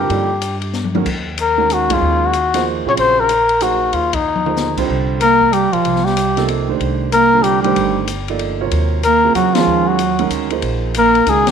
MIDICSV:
0, 0, Header, 1, 6, 480
1, 0, Start_track
1, 0, Tempo, 318810
1, 155, Time_signature, 3, 2, 24, 8
1, 17332, End_track
2, 0, Start_track
2, 0, Title_t, "Trumpet"
2, 0, Program_c, 0, 56
2, 0, Note_on_c, 0, 67, 65
2, 879, Note_off_c, 0, 67, 0
2, 2123, Note_on_c, 0, 70, 77
2, 2601, Note_on_c, 0, 66, 77
2, 2623, Note_off_c, 0, 70, 0
2, 2907, Note_on_c, 0, 65, 76
2, 2930, Note_off_c, 0, 66, 0
2, 3397, Note_on_c, 0, 66, 85
2, 3420, Note_off_c, 0, 65, 0
2, 4024, Note_off_c, 0, 66, 0
2, 4350, Note_on_c, 0, 73, 78
2, 4418, Note_off_c, 0, 73, 0
2, 4508, Note_on_c, 0, 72, 94
2, 4823, Note_on_c, 0, 70, 83
2, 4845, Note_off_c, 0, 72, 0
2, 5457, Note_on_c, 0, 66, 75
2, 5479, Note_off_c, 0, 70, 0
2, 5933, Note_on_c, 0, 65, 75
2, 5955, Note_off_c, 0, 66, 0
2, 6243, Note_on_c, 0, 63, 68
2, 6265, Note_off_c, 0, 65, 0
2, 7193, Note_off_c, 0, 63, 0
2, 7850, Note_on_c, 0, 70, 94
2, 8329, Note_on_c, 0, 67, 81
2, 8351, Note_off_c, 0, 70, 0
2, 8629, Note_on_c, 0, 65, 76
2, 8651, Note_off_c, 0, 67, 0
2, 9106, Note_on_c, 0, 67, 72
2, 9128, Note_off_c, 0, 65, 0
2, 9759, Note_off_c, 0, 67, 0
2, 10736, Note_on_c, 0, 70, 95
2, 11181, Note_on_c, 0, 67, 84
2, 11204, Note_off_c, 0, 70, 0
2, 11473, Note_off_c, 0, 67, 0
2, 11482, Note_on_c, 0, 67, 71
2, 12100, Note_off_c, 0, 67, 0
2, 13615, Note_on_c, 0, 70, 90
2, 14053, Note_off_c, 0, 70, 0
2, 14080, Note_on_c, 0, 66, 77
2, 14369, Note_on_c, 0, 65, 76
2, 14392, Note_off_c, 0, 66, 0
2, 14868, Note_on_c, 0, 66, 71
2, 14891, Note_off_c, 0, 65, 0
2, 15520, Note_off_c, 0, 66, 0
2, 16534, Note_on_c, 0, 70, 94
2, 17004, Note_on_c, 0, 68, 85
2, 17027, Note_off_c, 0, 70, 0
2, 17332, Note_off_c, 0, 68, 0
2, 17332, End_track
3, 0, Start_track
3, 0, Title_t, "Grand piano"
3, 0, Program_c, 1, 0
3, 0, Note_on_c, 1, 50, 56
3, 0, Note_on_c, 1, 55, 52
3, 0, Note_on_c, 1, 60, 55
3, 0, Note_on_c, 1, 65, 49
3, 0, Note_on_c, 1, 70, 61
3, 155, Note_on_c, 1, 53, 55
3, 160, Note_on_c, 1, 63, 51
3, 163, Note_on_c, 1, 58, 50
3, 163, Note_on_c, 1, 74, 59
3, 164, Note_on_c, 1, 69, 54
3, 401, Note_off_c, 1, 50, 0
3, 402, Note_off_c, 1, 55, 0
3, 405, Note_off_c, 1, 60, 0
3, 409, Note_off_c, 1, 65, 0
3, 409, Note_off_c, 1, 70, 0
3, 431, Note_off_c, 1, 53, 0
3, 433, Note_off_c, 1, 63, 0
3, 435, Note_off_c, 1, 58, 0
3, 435, Note_off_c, 1, 69, 0
3, 435, Note_off_c, 1, 74, 0
3, 1430, Note_on_c, 1, 51, 69
3, 1432, Note_on_c, 1, 56, 60
3, 1433, Note_on_c, 1, 61, 60
3, 1435, Note_on_c, 1, 66, 61
3, 1439, Note_on_c, 1, 70, 71
3, 1582, Note_off_c, 1, 51, 0
3, 1583, Note_off_c, 1, 56, 0
3, 1584, Note_off_c, 1, 61, 0
3, 1585, Note_off_c, 1, 66, 0
3, 1587, Note_off_c, 1, 70, 0
3, 2376, Note_on_c, 1, 51, 63
3, 2381, Note_on_c, 1, 66, 57
3, 2384, Note_on_c, 1, 56, 54
3, 2384, Note_on_c, 1, 70, 67
3, 2385, Note_on_c, 1, 61, 54
3, 2828, Note_off_c, 1, 51, 0
3, 2831, Note_off_c, 1, 66, 0
3, 2832, Note_off_c, 1, 56, 0
3, 2832, Note_off_c, 1, 61, 0
3, 2832, Note_off_c, 1, 70, 0
3, 2860, Note_on_c, 1, 56, 60
3, 2862, Note_on_c, 1, 51, 65
3, 2869, Note_on_c, 1, 61, 60
3, 2871, Note_on_c, 1, 68, 73
3, 2872, Note_on_c, 1, 54, 56
3, 3480, Note_off_c, 1, 56, 0
3, 3481, Note_off_c, 1, 51, 0
3, 3485, Note_off_c, 1, 61, 0
3, 3486, Note_off_c, 1, 54, 0
3, 3486, Note_off_c, 1, 68, 0
3, 3821, Note_on_c, 1, 53, 67
3, 3826, Note_on_c, 1, 58, 56
3, 3832, Note_on_c, 1, 63, 62
3, 3833, Note_on_c, 1, 68, 57
3, 3837, Note_on_c, 1, 72, 70
3, 4271, Note_off_c, 1, 53, 0
3, 4273, Note_off_c, 1, 58, 0
3, 4276, Note_off_c, 1, 63, 0
3, 4277, Note_off_c, 1, 68, 0
3, 4279, Note_off_c, 1, 72, 0
3, 4309, Note_on_c, 1, 49, 64
3, 4313, Note_on_c, 1, 54, 62
3, 4318, Note_on_c, 1, 60, 56
3, 4319, Note_on_c, 1, 65, 61
3, 4320, Note_on_c, 1, 68, 70
3, 4925, Note_off_c, 1, 49, 0
3, 4927, Note_off_c, 1, 54, 0
3, 4929, Note_off_c, 1, 60, 0
3, 4930, Note_off_c, 1, 65, 0
3, 4930, Note_off_c, 1, 68, 0
3, 5434, Note_on_c, 1, 54, 54
3, 5437, Note_on_c, 1, 58, 46
3, 5441, Note_on_c, 1, 68, 48
3, 5444, Note_on_c, 1, 63, 48
3, 5445, Note_on_c, 1, 72, 58
3, 6160, Note_off_c, 1, 54, 0
3, 6162, Note_off_c, 1, 58, 0
3, 6163, Note_off_c, 1, 68, 0
3, 6165, Note_off_c, 1, 63, 0
3, 6166, Note_off_c, 1, 72, 0
3, 6718, Note_on_c, 1, 53, 50
3, 6718, Note_on_c, 1, 58, 44
3, 6719, Note_on_c, 1, 63, 47
3, 6722, Note_on_c, 1, 68, 47
3, 6726, Note_on_c, 1, 72, 54
3, 7160, Note_off_c, 1, 53, 0
3, 7160, Note_off_c, 1, 58, 0
3, 7160, Note_off_c, 1, 63, 0
3, 7162, Note_off_c, 1, 68, 0
3, 7164, Note_off_c, 1, 72, 0
3, 7189, Note_on_c, 1, 50, 69
3, 7193, Note_on_c, 1, 55, 65
3, 7196, Note_on_c, 1, 60, 61
3, 7199, Note_on_c, 1, 65, 62
3, 7202, Note_on_c, 1, 72, 79
3, 7805, Note_off_c, 1, 50, 0
3, 7807, Note_off_c, 1, 55, 0
3, 7809, Note_off_c, 1, 60, 0
3, 7810, Note_off_c, 1, 65, 0
3, 7812, Note_off_c, 1, 72, 0
3, 9585, Note_on_c, 1, 48, 65
3, 9592, Note_on_c, 1, 53, 59
3, 9599, Note_on_c, 1, 63, 61
3, 9600, Note_on_c, 1, 58, 65
3, 9602, Note_on_c, 1, 69, 70
3, 10033, Note_off_c, 1, 48, 0
3, 10037, Note_off_c, 1, 53, 0
3, 10041, Note_off_c, 1, 58, 0
3, 10041, Note_off_c, 1, 63, 0
3, 10042, Note_off_c, 1, 69, 0
3, 10075, Note_on_c, 1, 51, 64
3, 10077, Note_on_c, 1, 57, 56
3, 10086, Note_on_c, 1, 62, 61
3, 10087, Note_on_c, 1, 67, 54
3, 10092, Note_on_c, 1, 72, 71
3, 10688, Note_off_c, 1, 51, 0
3, 10690, Note_off_c, 1, 57, 0
3, 10694, Note_off_c, 1, 62, 0
3, 10695, Note_off_c, 1, 67, 0
3, 10697, Note_off_c, 1, 72, 0
3, 11043, Note_on_c, 1, 50, 58
3, 11048, Note_on_c, 1, 55, 50
3, 11053, Note_on_c, 1, 65, 50
3, 11054, Note_on_c, 1, 60, 50
3, 11059, Note_on_c, 1, 70, 58
3, 11482, Note_off_c, 1, 50, 0
3, 11485, Note_off_c, 1, 55, 0
3, 11488, Note_off_c, 1, 60, 0
3, 11488, Note_off_c, 1, 65, 0
3, 11491, Note_off_c, 1, 70, 0
3, 11513, Note_on_c, 1, 51, 67
3, 11515, Note_on_c, 1, 57, 58
3, 11516, Note_on_c, 1, 62, 62
3, 11522, Note_on_c, 1, 67, 60
3, 11527, Note_on_c, 1, 72, 77
3, 12128, Note_off_c, 1, 51, 0
3, 12128, Note_off_c, 1, 57, 0
3, 12129, Note_off_c, 1, 62, 0
3, 12132, Note_off_c, 1, 67, 0
3, 12135, Note_off_c, 1, 72, 0
3, 12487, Note_on_c, 1, 53, 61
3, 12492, Note_on_c, 1, 58, 50
3, 12498, Note_on_c, 1, 63, 57
3, 12501, Note_on_c, 1, 69, 56
3, 12501, Note_on_c, 1, 74, 66
3, 12925, Note_off_c, 1, 53, 0
3, 12927, Note_off_c, 1, 58, 0
3, 12930, Note_off_c, 1, 63, 0
3, 12932, Note_off_c, 1, 69, 0
3, 12932, Note_off_c, 1, 74, 0
3, 12946, Note_on_c, 1, 54, 61
3, 12958, Note_on_c, 1, 48, 57
3, 12959, Note_on_c, 1, 65, 58
3, 12962, Note_on_c, 1, 73, 70
3, 12963, Note_on_c, 1, 70, 61
3, 13564, Note_off_c, 1, 54, 0
3, 13570, Note_off_c, 1, 48, 0
3, 13570, Note_off_c, 1, 65, 0
3, 13572, Note_off_c, 1, 70, 0
3, 13572, Note_off_c, 1, 73, 0
3, 13911, Note_on_c, 1, 49, 52
3, 13913, Note_on_c, 1, 60, 49
3, 13915, Note_on_c, 1, 54, 48
3, 13921, Note_on_c, 1, 65, 48
3, 13926, Note_on_c, 1, 68, 63
3, 14356, Note_off_c, 1, 49, 0
3, 14358, Note_off_c, 1, 54, 0
3, 14358, Note_off_c, 1, 60, 0
3, 14361, Note_off_c, 1, 65, 0
3, 14364, Note_off_c, 1, 68, 0
3, 14391, Note_on_c, 1, 51, 71
3, 14398, Note_on_c, 1, 61, 66
3, 14400, Note_on_c, 1, 56, 62
3, 14401, Note_on_c, 1, 65, 64
3, 14409, Note_on_c, 1, 68, 79
3, 15007, Note_off_c, 1, 51, 0
3, 15010, Note_off_c, 1, 61, 0
3, 15011, Note_off_c, 1, 56, 0
3, 15011, Note_off_c, 1, 65, 0
3, 15015, Note_off_c, 1, 68, 0
3, 15345, Note_on_c, 1, 51, 64
3, 15351, Note_on_c, 1, 61, 59
3, 15352, Note_on_c, 1, 56, 63
3, 15355, Note_on_c, 1, 70, 74
3, 15357, Note_on_c, 1, 66, 61
3, 15793, Note_off_c, 1, 51, 0
3, 15796, Note_off_c, 1, 61, 0
3, 15797, Note_off_c, 1, 56, 0
3, 15798, Note_off_c, 1, 70, 0
3, 15799, Note_off_c, 1, 66, 0
3, 15822, Note_on_c, 1, 53, 56
3, 15826, Note_on_c, 1, 58, 55
3, 15826, Note_on_c, 1, 63, 58
3, 15829, Note_on_c, 1, 68, 57
3, 15832, Note_on_c, 1, 72, 64
3, 16442, Note_off_c, 1, 53, 0
3, 16444, Note_off_c, 1, 58, 0
3, 16444, Note_off_c, 1, 63, 0
3, 16445, Note_off_c, 1, 68, 0
3, 16447, Note_off_c, 1, 72, 0
3, 16957, Note_on_c, 1, 51, 52
3, 16964, Note_on_c, 1, 56, 45
3, 16967, Note_on_c, 1, 61, 42
3, 16971, Note_on_c, 1, 66, 44
3, 16975, Note_on_c, 1, 70, 55
3, 17332, Note_off_c, 1, 51, 0
3, 17332, Note_off_c, 1, 56, 0
3, 17332, Note_off_c, 1, 61, 0
3, 17332, Note_off_c, 1, 66, 0
3, 17332, Note_off_c, 1, 70, 0
3, 17332, End_track
4, 0, Start_track
4, 0, Title_t, "Bass clarinet"
4, 0, Program_c, 2, 71
4, 7848, Note_on_c, 2, 58, 74
4, 8319, Note_on_c, 2, 55, 68
4, 8341, Note_off_c, 2, 58, 0
4, 8609, Note_on_c, 2, 53, 70
4, 8632, Note_off_c, 2, 55, 0
4, 9092, Note_on_c, 2, 55, 62
4, 9115, Note_off_c, 2, 53, 0
4, 9752, Note_off_c, 2, 55, 0
4, 10724, Note_on_c, 2, 58, 70
4, 11183, Note_on_c, 2, 55, 67
4, 11205, Note_off_c, 2, 58, 0
4, 11467, Note_off_c, 2, 55, 0
4, 11476, Note_on_c, 2, 55, 67
4, 12097, Note_off_c, 2, 55, 0
4, 13611, Note_on_c, 2, 58, 70
4, 14051, Note_off_c, 2, 58, 0
4, 14079, Note_on_c, 2, 54, 68
4, 14386, Note_on_c, 2, 53, 69
4, 14409, Note_off_c, 2, 54, 0
4, 14854, Note_on_c, 2, 54, 64
4, 14877, Note_off_c, 2, 53, 0
4, 15513, Note_off_c, 2, 54, 0
4, 16512, Note_on_c, 2, 58, 80
4, 16973, Note_on_c, 2, 56, 72
4, 16996, Note_off_c, 2, 58, 0
4, 17273, Note_on_c, 2, 54, 69
4, 17296, Note_off_c, 2, 56, 0
4, 17332, Note_off_c, 2, 54, 0
4, 17332, End_track
5, 0, Start_track
5, 0, Title_t, "Upright bass"
5, 0, Program_c, 3, 32
5, 143, Note_on_c, 3, 43, 77
5, 1529, Note_off_c, 3, 43, 0
5, 1590, Note_on_c, 3, 39, 73
5, 2973, Note_off_c, 3, 39, 0
5, 3029, Note_on_c, 3, 39, 78
5, 4238, Note_off_c, 3, 39, 0
5, 4301, Note_on_c, 3, 46, 65
5, 4463, Note_off_c, 3, 46, 0
5, 4484, Note_on_c, 3, 34, 76
5, 5860, Note_off_c, 3, 34, 0
5, 5915, Note_on_c, 3, 39, 77
5, 7296, Note_off_c, 3, 39, 0
5, 7359, Note_on_c, 3, 36, 75
5, 8564, Note_off_c, 3, 36, 0
5, 8613, Note_on_c, 3, 35, 62
5, 8779, Note_off_c, 3, 35, 0
5, 8799, Note_on_c, 3, 36, 75
5, 10178, Note_off_c, 3, 36, 0
5, 10231, Note_on_c, 3, 36, 72
5, 11614, Note_off_c, 3, 36, 0
5, 11690, Note_on_c, 3, 31, 77
5, 13064, Note_off_c, 3, 31, 0
5, 13122, Note_on_c, 3, 39, 75
5, 14020, Note_off_c, 3, 39, 0
5, 14069, Note_on_c, 3, 40, 68
5, 14519, Note_off_c, 3, 40, 0
5, 14556, Note_on_c, 3, 39, 76
5, 15456, Note_off_c, 3, 39, 0
5, 15505, Note_on_c, 3, 38, 66
5, 15957, Note_off_c, 3, 38, 0
5, 15994, Note_on_c, 3, 34, 78
5, 16895, Note_off_c, 3, 34, 0
5, 16953, Note_on_c, 3, 37, 66
5, 17332, Note_off_c, 3, 37, 0
5, 17332, End_track
6, 0, Start_track
6, 0, Title_t, "Drums"
6, 149, Note_on_c, 9, 51, 51
6, 299, Note_off_c, 9, 51, 0
6, 626, Note_on_c, 9, 44, 48
6, 626, Note_on_c, 9, 51, 59
6, 776, Note_off_c, 9, 44, 0
6, 776, Note_off_c, 9, 51, 0
6, 928, Note_on_c, 9, 51, 40
6, 1078, Note_off_c, 9, 51, 0
6, 1104, Note_on_c, 9, 44, 42
6, 1107, Note_on_c, 9, 38, 37
6, 1255, Note_off_c, 9, 44, 0
6, 1258, Note_off_c, 9, 38, 0
6, 1267, Note_on_c, 9, 48, 49
6, 1418, Note_off_c, 9, 48, 0
6, 1427, Note_on_c, 9, 48, 72
6, 1577, Note_off_c, 9, 48, 0
6, 1590, Note_on_c, 9, 36, 61
6, 1592, Note_on_c, 9, 49, 61
6, 1741, Note_off_c, 9, 36, 0
6, 1742, Note_off_c, 9, 49, 0
6, 2072, Note_on_c, 9, 44, 50
6, 2072, Note_on_c, 9, 51, 61
6, 2222, Note_off_c, 9, 44, 0
6, 2222, Note_off_c, 9, 51, 0
6, 2558, Note_on_c, 9, 44, 53
6, 2558, Note_on_c, 9, 51, 55
6, 2709, Note_off_c, 9, 44, 0
6, 2709, Note_off_c, 9, 51, 0
6, 2860, Note_on_c, 9, 36, 74
6, 2861, Note_on_c, 9, 51, 69
6, 3011, Note_off_c, 9, 36, 0
6, 3011, Note_off_c, 9, 51, 0
6, 3513, Note_on_c, 9, 44, 51
6, 3513, Note_on_c, 9, 51, 53
6, 3663, Note_off_c, 9, 44, 0
6, 3663, Note_off_c, 9, 51, 0
6, 3824, Note_on_c, 9, 51, 62
6, 3827, Note_on_c, 9, 38, 36
6, 3974, Note_off_c, 9, 51, 0
6, 3977, Note_off_c, 9, 38, 0
6, 4476, Note_on_c, 9, 51, 58
6, 4626, Note_off_c, 9, 51, 0
6, 4953, Note_on_c, 9, 44, 52
6, 4953, Note_on_c, 9, 51, 60
6, 5104, Note_off_c, 9, 44, 0
6, 5104, Note_off_c, 9, 51, 0
6, 5255, Note_on_c, 9, 51, 43
6, 5406, Note_off_c, 9, 51, 0
6, 5429, Note_on_c, 9, 44, 54
6, 5429, Note_on_c, 9, 51, 61
6, 5579, Note_off_c, 9, 44, 0
6, 5579, Note_off_c, 9, 51, 0
6, 5913, Note_on_c, 9, 51, 49
6, 6064, Note_off_c, 9, 51, 0
6, 6219, Note_on_c, 9, 51, 66
6, 6224, Note_on_c, 9, 36, 70
6, 6370, Note_off_c, 9, 51, 0
6, 6375, Note_off_c, 9, 36, 0
6, 6558, Note_on_c, 9, 48, 49
6, 6708, Note_off_c, 9, 48, 0
6, 6717, Note_on_c, 9, 47, 68
6, 6868, Note_off_c, 9, 47, 0
6, 6876, Note_on_c, 9, 44, 55
6, 6879, Note_on_c, 9, 38, 47
6, 7027, Note_off_c, 9, 44, 0
6, 7030, Note_off_c, 9, 38, 0
6, 7187, Note_on_c, 9, 36, 73
6, 7189, Note_on_c, 9, 49, 67
6, 7338, Note_off_c, 9, 36, 0
6, 7339, Note_off_c, 9, 49, 0
6, 7838, Note_on_c, 9, 44, 47
6, 7838, Note_on_c, 9, 51, 61
6, 7989, Note_off_c, 9, 44, 0
6, 7989, Note_off_c, 9, 51, 0
6, 8151, Note_on_c, 9, 36, 45
6, 8301, Note_off_c, 9, 36, 0
6, 8324, Note_on_c, 9, 44, 45
6, 8324, Note_on_c, 9, 51, 55
6, 8475, Note_off_c, 9, 44, 0
6, 8475, Note_off_c, 9, 51, 0
6, 8628, Note_on_c, 9, 51, 42
6, 8779, Note_off_c, 9, 51, 0
6, 8805, Note_on_c, 9, 51, 51
6, 8956, Note_off_c, 9, 51, 0
6, 8972, Note_on_c, 9, 38, 27
6, 9123, Note_off_c, 9, 38, 0
6, 9129, Note_on_c, 9, 38, 39
6, 9279, Note_off_c, 9, 38, 0
6, 9285, Note_on_c, 9, 44, 54
6, 9285, Note_on_c, 9, 51, 62
6, 9435, Note_off_c, 9, 44, 0
6, 9435, Note_off_c, 9, 51, 0
6, 9591, Note_on_c, 9, 51, 43
6, 9594, Note_on_c, 9, 38, 34
6, 9742, Note_off_c, 9, 51, 0
6, 9745, Note_off_c, 9, 38, 0
6, 9763, Note_on_c, 9, 51, 51
6, 9914, Note_off_c, 9, 51, 0
6, 10245, Note_on_c, 9, 51, 47
6, 10396, Note_off_c, 9, 51, 0
6, 10723, Note_on_c, 9, 44, 59
6, 10723, Note_on_c, 9, 51, 63
6, 10873, Note_off_c, 9, 44, 0
6, 10873, Note_off_c, 9, 51, 0
6, 11198, Note_on_c, 9, 44, 46
6, 11198, Note_on_c, 9, 51, 57
6, 11349, Note_off_c, 9, 44, 0
6, 11349, Note_off_c, 9, 51, 0
6, 11507, Note_on_c, 9, 51, 42
6, 11657, Note_off_c, 9, 51, 0
6, 11685, Note_on_c, 9, 51, 51
6, 11836, Note_off_c, 9, 51, 0
6, 12158, Note_on_c, 9, 44, 58
6, 12158, Note_on_c, 9, 51, 65
6, 12308, Note_off_c, 9, 44, 0
6, 12308, Note_off_c, 9, 51, 0
6, 12468, Note_on_c, 9, 51, 41
6, 12619, Note_off_c, 9, 51, 0
6, 12635, Note_on_c, 9, 51, 47
6, 12786, Note_off_c, 9, 51, 0
6, 13120, Note_on_c, 9, 51, 53
6, 13271, Note_off_c, 9, 51, 0
6, 13600, Note_on_c, 9, 44, 52
6, 13600, Note_on_c, 9, 51, 58
6, 13751, Note_off_c, 9, 44, 0
6, 13751, Note_off_c, 9, 51, 0
6, 14078, Note_on_c, 9, 44, 48
6, 14078, Note_on_c, 9, 51, 55
6, 14229, Note_off_c, 9, 44, 0
6, 14229, Note_off_c, 9, 51, 0
6, 14377, Note_on_c, 9, 51, 60
6, 14380, Note_on_c, 9, 38, 74
6, 14528, Note_off_c, 9, 51, 0
6, 14531, Note_off_c, 9, 38, 0
6, 15036, Note_on_c, 9, 44, 56
6, 15036, Note_on_c, 9, 51, 59
6, 15187, Note_off_c, 9, 44, 0
6, 15187, Note_off_c, 9, 51, 0
6, 15338, Note_on_c, 9, 51, 42
6, 15489, Note_off_c, 9, 51, 0
6, 15515, Note_on_c, 9, 44, 46
6, 15515, Note_on_c, 9, 51, 56
6, 15666, Note_off_c, 9, 44, 0
6, 15666, Note_off_c, 9, 51, 0
6, 15814, Note_on_c, 9, 51, 42
6, 15965, Note_off_c, 9, 51, 0
6, 15992, Note_on_c, 9, 51, 50
6, 16143, Note_off_c, 9, 51, 0
6, 16478, Note_on_c, 9, 44, 51
6, 16478, Note_on_c, 9, 51, 66
6, 16629, Note_off_c, 9, 44, 0
6, 16629, Note_off_c, 9, 51, 0
6, 16788, Note_on_c, 9, 51, 41
6, 16938, Note_off_c, 9, 51, 0
6, 16961, Note_on_c, 9, 44, 46
6, 16961, Note_on_c, 9, 51, 59
6, 17112, Note_off_c, 9, 44, 0
6, 17112, Note_off_c, 9, 51, 0
6, 17267, Note_on_c, 9, 51, 62
6, 17270, Note_on_c, 9, 38, 70
6, 17332, Note_off_c, 9, 38, 0
6, 17332, Note_off_c, 9, 51, 0
6, 17332, End_track
0, 0, End_of_file